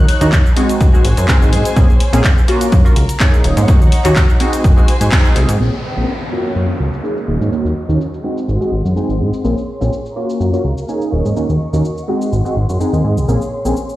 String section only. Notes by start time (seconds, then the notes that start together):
Already playing: D#4 C#5 F#6
0.56 F#4 C5 G#5
1.77 C#4
2.49 A#4
3.44 D#4 C#5 F#5
4.40 F#4 C5 G#5
5.60 C#4 C5 G#5
6.31 F#3 F5 A#5
7.28 F#4 D#5 C#6
8.24 G#4 F#5 C6
9.45 G#4 C#5
10.17 A#4 F5 A#5
11.12 D#5 C#6
12.09 G#4 F#5 C6
13.28 C#5 C6